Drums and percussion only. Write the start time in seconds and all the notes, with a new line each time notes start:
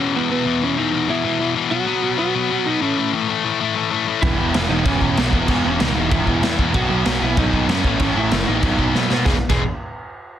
4.23 kick, crash
4.54 snare, crash
4.85 kick, crash
5.01 kick
5.17 snare, crash
5.33 kick
5.48 kick, crash
5.80 snare, crash
6.11 kick, crash
6.27 kick
6.43 snare, crash
6.59 kick
6.74 kick, crash
7.05 snare, crash
7.37 kick, crash
7.53 kick
7.69 snare, crash
7.85 kick
8.00 kick, crash
8.31 snare, crash
8.63 kick, crash
8.79 kick
8.95 snare
9.10 snare
9.26 kick, snare
9.49 kick, crash